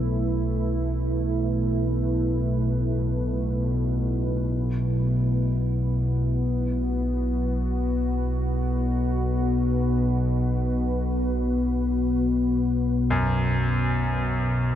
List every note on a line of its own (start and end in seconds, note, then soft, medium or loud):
0.00 14.75 B1 medium
0.00 14.75 B2 medium
0.00 4.47 A3 medium
0.00 8.18 E4 medium
0.00 14.75 B4 medium
4.48 14.75 B3 medium
5.04 14.75 F#4 medium
13.10 14.75 F#2 medium